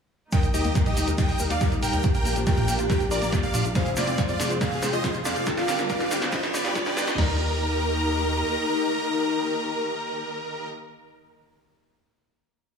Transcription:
0.32 string section G3 A#3 D#4, synth pluck D#4, soft synth lead A#4, supersaw synth D#5 G5, digital synth lead G5, kick, snare, closed hi-hat, riser, shaker
0.43 analog synth bass D#2, closed hi-hat, shaker
0.54 analog synth bass D#2, synth pluck D#4, supersaw synth G4 D#5, digital synth lead D#5, open hi-hat, shaker
0.64 analog synth bass D#2, synth pluck A#3, closed hi-hat, shaker
0.75 synth pluck A#4, kick, snare, closed hi-hat, shaker
0.86 analog synth bass D#1, synth pluck D#4, supersaw synth G4 D#5, digital synth lead D#5, closed hi-hat, shaker
0.97 analog synth bass D#2, synth pluck D#4, soft synth lead G4, open hi-hat, shaker
1.07 analog synth bass D#2, synth pluck A#4, closed hi-hat, shaker
1.18 synth pluck A#4, supersaw synth D#5 G5, digital synth lead G5, kick, snare, closed hi-hat, shaker
1.28 analog synth bass D#2, open hi-hat, shaker
1.39 analog synth bass D#2, synth pluck A#4, open hi-hat, shaker
1.50 analog synth bass D#2, synth pluck D#4, supersaw synth D5 F5, digital synth lead F5, closed hi-hat, shaker
1.61 soft synth lead G4, synth pluck A#4, kick, snare, closed hi-hat, shaker
1.72 analog synth bass D#2, synth pluck D#4, closed hi-hat, shaker
1.82 analog synth bass D#1, supersaw synth A#4 G5, synth pluck A#4, digital synth lead G5, open hi-hat, shaker
1.93 analog synth bass D#2, synth pluck A#4, closed hi-hat, shaker
2.03 string section F3 D4, synth pluck A#3, kick, snare, closed hi-hat, shaker
2.14 analog synth bass A#1, supersaw synth A#4 G5, digital synth lead G5, closed hi-hat, shaker
2.25 analog synth bass A#1, synth pluck A#3, open hi-hat, shaker
2.36 analog synth bass A#1, synth pluck F3, closed hi-hat, shaker
2.46 synth pluck F4, supersaw synth A#4 G5, digital synth lead G5, kick, snare, closed hi-hat, shaker
2.57 analog synth bass A#2, synth pluck A#3, closed hi-hat, shaker
2.68 analog synth bass A#1, synth pluck A#3, open hi-hat, shaker
2.79 analog synth bass A#1, synth pluck F4, closed hi-hat, shaker
2.90 synth pluck F4, supersaw synth A#4 G5, digital synth lead G5, kick, snare, closed hi-hat, shaker
3.00 analog synth bass A#1, closed hi-hat, shaker
3.11 analog synth bass A#1, synth pluck F4, supersaw synth A#4 D5, digital synth lead D5, open hi-hat, shaker
3.22 analog synth bass A#1, synth pluck A#3, closed hi-hat, shaker
3.32 synth pluck F4, kick, snare, closed hi-hat, shaker
3.43 analog synth bass A#1, synth pluck A#3, supersaw synth D5 F5, digital synth lead F5, closed hi-hat, shaker
3.54 analog synth bass A#2, synth pluck F4, open hi-hat, shaker
3.64 analog synth bass A#1, synth pluck F4, closed hi-hat, shaker
3.75 string section G#3 C4, synth pluck F4, supersaw synth G#4 F5, soft synth lead C5, digital synth lead F5, kick, snare, closed hi-hat, shaker
3.86 analog synth bass F1, closed hi-hat, shaker
3.96 analog synth bass F1, synth pluck F4, supersaw synth F4 D5, digital synth lead D5, snare, open hi-hat, shaker
4.07 analog synth bass F1, synth pluck C4, closed hi-hat, shaker
4.18 synth pluck C5, kick, snare, closed hi-hat, shaker
4.28 analog synth bass F2, synth pluck F4, supersaw synth F4 D5, digital synth lead D5, closed hi-hat, shaker
4.40 analog synth bass F1, synth pluck F4, soft synth lead G#4, snare, open hi-hat, shaker
4.50 analog synth bass F1, synth pluck C5, closed hi-hat, shaker
4.61 supersaw synth G#4 F5, synth pluck C5, digital synth lead F5, kick, snare, closed hi-hat, shaker
4.72 analog synth bass F1, open hi-hat, shaker
4.82 analog synth bass F1, synth pluck C5, snare, open hi-hat, shaker
4.93 analog synth bass F1, synth pluck F4, supersaw synth C5 D#5, digital synth lead D#5, closed hi-hat, shaker
5.04 soft synth lead F4, synth pluck C5, kick, snare, closed hi-hat, shaker
5.14 analog synth bass F1, synth pluck F4, closed hi-hat, shaker
5.25 analog synth bass F2, synth pluck C5, supersaw synth D5 F5, digital synth lead F5, snare, open hi-hat, shaker
5.36 analog synth bass F1, synth pluck C5, closed hi-hat, shaker
5.46 string section D3 G3 B3, synth pluck G4, kick, snare, closed hi-hat, shaker
5.57 analog synth bass G1, supersaw synth D5 F5, digital synth lead F5, snare, closed hi-hat, shaker
5.68 analog synth bass G1, synth pluck G4, snare, open hi-hat, shaker
5.78 analog synth bass G1, synth pluck D4, snare, closed hi-hat, shaker
5.89 supersaw synth D5 F5, synth pluck D5, digital synth lead F5, kick, snare, closed hi-hat, shaker
6.00 analog synth bass G2, synth pluck G4, snare, closed hi-hat, shaker
6.11 analog synth bass G1, synth pluck G4, snare, open hi-hat, shaker
6.22 analog synth bass G1, synth pluck D5, snare, closed hi-hat, shaker
6.32 supersaw synth B4 D#5, synth pluck D5, digital synth lead D#5, kick, snare, closed hi-hat, shaker
6.43 analog synth bass G1, snare, closed hi-hat, shaker
6.54 analog synth bass G1, supersaw synth B4 D5, synth pluck D5, digital synth lead D5, snare, open hi-hat, shaker
6.65 analog synth bass G2, synth pluck G4, snare, closed hi-hat, shaker
6.75 synth pluck D5, kick, snare, closed hi-hat, shaker
6.85 analog synth bass G1, synth pluck G4, supersaw synth G4 B4, digital synth lead B4, snare, closed hi-hat, shaker
6.97 analog synth bass G1, synth pluck D5, snare, open hi-hat, shaker
7.07 analog synth bass G#1, synth pluck D5, snare, closed hi-hat, shaker
7.18 analog synth bass D#2, string section D#3 A#3 G4 D#5 A#5, synth pluck D#4, soft synth lead D#4, digital synth lead A#4, supersaw synth A#4, snare, floor tom, crash

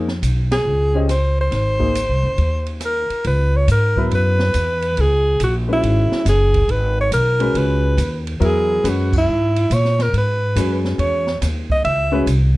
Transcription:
Already playing: upright bass F2
0.08 snare
0.22 upright bass B1, hi-hat pedal, ride
0.52 alto saxophone G#4, snare, ride
0.65 upright bass C#2
0.94 grand piano C#4 G4 C5 D#5
1.09 alto saxophone C5, cross-stick, hi-hat pedal, ride
1.41 alto saxophone C5
1.51 upright bass G#1, snare, ride
1.79 grand piano A#3 D#4 G#4 C5, kick
1.95 hi-hat pedal, ride
2.09 upright bass C2
2.23 upright bass F#1
2.38 upright bass D#2, ride
2.66 ride
2.80 cross-stick, hi-hat pedal, ride
2.85 alto saxophone A#4
3.10 muted upright bass stroke, ride
3.24 upright bass C#2, alto saxophone B4, ride
3.56 alto saxophone C#5
3.68 upright bass G#2, alto saxophone A#4, hi-hat pedal, ride
3.96 grand piano F#3 B3 E4 B4, kick
4.11 upright bass F#2, ride
4.15 alto saxophone B4
4.39 snare
4.54 upright bass E2, hi-hat pedal, ride
4.82 ride
4.97 upright bass C#2, alto saxophone G#4, ride
5.40 upright bass A#1, hi-hat pedal, ride
5.44 alto saxophone F#4
5.68 grand piano G#3 C#4 F#4 B4
5.73 alto saxophone E4
5.83 upright bass G#1, ride
6.12 snare
6.25 upright bass F#1, alto saxophone G#4, snare, hi-hat pedal, ride
6.54 kick, ride
6.68 upright bass G#1, alto saxophone B4, ride
7.01 alto saxophone C#5
7.12 upright bass B1, alto saxophone A#4, hi-hat pedal, ride
7.39 grand piano G#3 C#4 F#4 B4, ride
7.54 upright bass C#2, alto saxophone B4, ride
7.97 upright bass D#2, hi-hat pedal, ride
8.27 ride
8.40 upright bass E2, grand piano F#3 B3 E4 A#4, ride
8.44 alto saxophone G#4
8.84 upright bass F#2, grand piano G#3 C#4 F#4 B4, hi-hat pedal, ride
8.89 alto saxophone F#4
9.13 kick, crash
9.18 alto saxophone E4
9.27 upright bass G#2
9.56 ride
9.70 upright bass A#2, alto saxophone C#5, hi-hat pedal, ride
9.85 snare
9.99 alto saxophone A#4, snare, ride
10.13 upright bass G#2, ride
10.18 alto saxophone B4
10.56 upright bass F#2, grand piano G#3 C#4 F#4 B4, hi-hat pedal, ride
10.85 snare
10.98 upright bass E2, alto saxophone C#5, ride
11.27 snare
11.42 upright bass D#2, snare, hi-hat pedal, ride
11.70 alto saxophone D#5, kick
11.84 upright bass C#2, alto saxophone E5, ride
12.12 grand piano G#3 C#4 F#4 B4
12.26 upright bass C2, hi-hat pedal, ride

